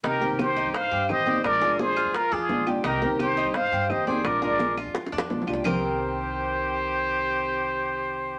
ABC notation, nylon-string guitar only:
X:1
M:4/4
L:1/8
Q:1/4=171
K:Cm
V:1 name="Nylon-string guitar"
[C,E,B,CG] [E,B,CG]3 z2 [E,B,CG] [E,B,CG] | [F,A,DF] [A,DF]3 z2 [F,A,DF] [A,DF] | [C,E,B,CG] [E,B,CG]3 z2 [E,B,CG] [E,B,CG] | [F,A,DF] [A,DF]3 z2 [F,A,DF] [A,DF] |
[C,E,B,CG]8- | [C,E,B,CG]8 |]